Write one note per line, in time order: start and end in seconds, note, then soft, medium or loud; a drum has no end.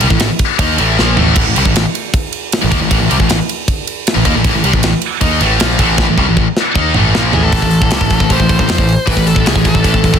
0.00 0.10 C2 medium
0.00 0.08 C3 medium
0.00 0.09 G3 loud
0.00 ride medium
0.10 0.19 A1 medium
0.10 0.19 A2 medium
0.10 0.20 E3 medium
0.10 kick medium
0.20 0.29 A1 medium
0.20 0.30 A2 medium
0.20 0.30 E3 medium
0.20 snare loud
0.20 ride loud
0.39 kick medium
0.39 ride medium
0.59 0.77 D#2 medium
0.59 0.77 D#3 medium
0.59 0.78 A#3 loud
0.59 0.78 D#4 medium
0.59 kick loud
0.59 ride medium
0.78 0.96 A1 medium
0.78 0.97 A2 medium
0.78 0.97 E3 loud
0.78 0.98 A3 loud
0.78 ride medium
0.98 1.16 A#1 medium
0.98 1.16 A#2 loud
0.98 1.17 F3 loud
0.98 1.17 A#3 loud
0.98 snare medium
1.17 1.36 A1 medium
1.17 1.35 A2 medium
1.17 1.36 E3 medium
1.17 1.36 A3 loud
1.17 floor tom medium
1.36 1.45 A1 medium
1.36 1.45 A2 loud
1.36 1.45 E3 loud
1.36 kick loud
1.36 crash loud
1.46 1.56 A1 medium
1.46 1.55 A2 medium
1.46 1.55 E3 medium
1.56 1.65 C2 loud
1.56 1.65 C3 loud
1.56 1.65 G3 loud
1.56 ride medium
1.65 1.74 A1 medium
1.65 1.74 A2 medium
1.65 1.74 E3 medium
1.65 kick medium
1.76 1.85 A1 medium
1.76 1.85 A2 medium
1.76 1.85 E3 medium
1.76 snare loud
1.76 ride medium
1.95 ride medium
2.14 kick loud
2.14 ride medium
2.33 ride medium
2.52 snare loud
2.52 ride loud
2.62 2.72 A1 medium
2.62 2.70 A2 medium
2.62 2.71 E3 medium
2.71 2.80 D#2 medium
2.71 2.80 D#3 medium
2.71 2.80 A#3 loud
2.71 kick medium
2.71 ride medium
2.81 2.90 A1 medium
2.81 2.89 A2 medium
2.81 2.90 E3 medium
2.91 3.00 A1 medium
2.91 2.99 A2 medium
2.91 2.99 E3 loud
2.91 kick loud
2.91 ride loud
3.00 3.10 A1 medium
3.00 3.09 A2 medium
3.00 3.09 E3 medium
3.10 3.19 C2 loud
3.10 3.18 C3 loud
3.10 3.19 G3 loud
3.10 ride medium
3.19 3.29 A1 medium
3.19 3.28 A2 medium
3.19 3.28 E3 medium
3.19 kick medium
3.29 3.39 A1 medium
3.29 3.38 A2 medium
3.29 3.39 E3 medium
3.29 snare loud
3.29 ride loud
3.49 ride medium
3.68 kick loud
3.68 ride loud
3.87 ride medium
4.07 snare loud
4.07 ride loud
4.14 4.25 A1 medium
4.14 4.25 A2 medium
4.14 4.25 E3 medium
4.25 4.34 D#2 loud
4.25 4.34 D#3 medium
4.25 4.34 A#3 medium
4.25 kick medium
4.25 ride medium
4.34 4.44 A1 medium
4.34 4.44 A2 medium
4.34 4.44 E3 medium
4.44 4.53 A1 medium
4.44 4.54 A2 loud
4.44 4.54 E3 loud
4.44 kick loud
4.44 ride loud
4.54 4.63 A1 medium
4.54 4.63 A2 medium
4.54 4.64 E3 medium
4.64 4.73 C2 medium
4.64 4.73 C3 loud
4.64 4.73 G3 loud
4.64 ride medium
4.73 4.83 A1 medium
4.73 4.82 A2 medium
4.73 4.83 E3 medium
4.73 kick medium
4.83 4.93 A1 medium
4.83 4.93 A2 medium
4.83 4.93 E3 medium
4.83 snare loud
4.83 ride medium
5.02 ride medium
5.21 5.39 D#2 medium
5.21 5.40 D#3 loud
5.21 5.40 A#3 medium
5.21 5.41 D#4 loud
5.21 kick loud
5.21 ride loud
5.41 5.59 A1 loud
5.41 5.59 A2 medium
5.41 5.59 E3 medium
5.41 5.60 A3 loud
5.41 ride medium
5.59 5.78 A#1 medium
5.59 5.78 A#2 medium
5.59 5.79 F3 loud
5.59 5.79 A#3 loud
5.59 snare loud
5.59 ride loud
5.70 snare soft
5.79 5.97 A1 loud
5.79 5.96 A2 medium
5.79 5.97 E3 medium
5.79 5.98 A3 loud
5.79 kick medium
5.79 ride medium
5.97 6.08 A1 medium
5.97 6.06 A2 medium
5.97 6.07 E3 loud
5.97 kick loud
5.97 snare medium
6.07 6.18 A1 medium
6.07 6.17 A2 medium
6.07 6.18 E3 medium
6.17 6.27 C2 loud
6.17 6.27 C3 medium
6.17 6.27 G3 loud
6.17 kick medium
6.28 6.37 A1 medium
6.28 6.37 A2 medium
6.28 6.37 E3 medium
6.37 6.46 A1 medium
6.37 6.47 A2 medium
6.37 6.47 E3 medium
6.37 kick medium
6.57 snare medium
6.75 6.94 D#2 medium
6.75 6.94 D#3 medium
6.75 6.94 A#3 medium
6.75 6.95 D#4 loud
6.75 kick loud
6.94 7.14 A1 loud
6.94 7.14 A2 medium
6.94 7.14 E3 medium
6.94 7.14 A3 loud
6.94 mid tom medium
7.14 7.33 A#1 medium
7.14 7.32 A#2 medium
7.14 7.33 F3 medium
7.14 7.33 A#3 loud
7.14 snare loud
7.32 7.53 A1 medium
7.32 7.52 A2 medium
7.32 7.52 E3 loud
7.32 7.52 A3 medium
7.32 7.43 G#4 medium
7.32 floor tom medium
7.43 8.30 A4 medium
7.52 7.62 A1 medium
7.52 7.61 A2 medium
7.52 7.62 E3 loud
7.52 kick loud
7.52 open hi-hat medium
7.62 7.81 A1 medium
7.62 7.78 A2 medium
7.62 7.78 E3 medium
7.62 kick medium
7.71 open hi-hat medium
7.82 7.91 A1 medium
7.82 7.91 A2 medium
7.82 7.92 E3 medium
7.82 kick medium
7.91 8.00 C2 medium
7.91 8.01 C3 medium
7.91 8.01 G3 medium
7.91 snare loud
7.91 open hi-hat medium
8.01 8.10 A1 medium
8.01 8.11 A2 medium
8.01 8.12 E3 medium
8.01 kick medium
8.10 8.20 A1 medium
8.10 8.20 A2 medium
8.10 8.20 E3 medium
8.10 kick medium
8.10 open hi-hat medium
8.20 8.30 A1 medium
8.20 8.30 A2 medium
8.20 8.30 E3 medium
8.20 kick medium
8.30 8.39 A1 medium
8.30 8.38 A2 medium
8.30 8.39 E3 medium
8.30 9.05 C5 medium
8.30 kick medium
8.30 open hi-hat medium
8.40 8.49 A1 medium
8.40 8.48 A2 medium
8.40 8.49 E3 medium
8.40 kick medium
8.49 8.59 A1 medium
8.49 8.58 A2 medium
8.49 8.59 E3 medium
8.49 kick medium
8.49 open hi-hat medium
8.59 8.68 A1 medium
8.59 8.67 A2 medium
8.59 8.69 E3 medium
8.59 kick medium
8.68 8.78 F2 medium
8.68 8.77 F3 medium
8.68 8.77 C4 loud
8.68 snare loud
8.68 open hi-hat medium
8.78 8.97 A1 medium
8.78 8.94 A2 medium
8.78 8.94 E3 medium
8.78 kick medium
8.89 open hi-hat medium
9.06 9.17 A1 medium
9.06 9.15 A2 medium
9.06 9.15 E3 loud
9.06 9.27 B4 medium
9.06 kick loud
9.06 open hi-hat medium
9.16 9.35 A1 medium
9.16 9.32 A2 medium
9.16 9.32 E3 medium
9.16 kick medium
9.27 9.46 A4 medium
9.27 open hi-hat medium
9.34 9.46 A1 medium
9.34 9.45 A2 medium
9.34 9.45 E3 medium
9.34 kick medium
9.46 9.55 C2 medium
9.46 9.54 C3 medium
9.46 9.54 G3 loud
9.46 9.66 G#4 medium
9.46 snare loud
9.46 open hi-hat medium
9.54 9.65 A1 medium
9.54 9.63 A2 medium
9.54 9.63 E3 medium
9.54 kick medium
9.64 9.75 A1 medium
9.64 9.72 A2 medium
9.64 9.73 E3 medium
9.64 10.19 A4 medium
9.64 kick medium
9.64 open hi-hat medium
9.74 9.84 A1 medium
9.74 9.81 A2 medium
9.74 9.82 E3 medium
9.74 kick medium
9.82 9.94 A1 medium
9.82 9.93 A2 medium
9.82 9.93 E3 loud
9.82 kick medium
9.82 open hi-hat medium
9.94 10.03 A1 medium
9.94 10.00 A2 medium
9.94 10.01 E3 medium
9.94 kick medium
10.02 10.13 A1 medium
10.02 10.12 A2 medium
10.02 10.12 E3 medium
10.02 kick medium
10.02 open hi-hat medium
10.13 10.19 A1 medium
10.13 10.19 A2 medium
10.13 10.19 E3 medium
10.13 kick medium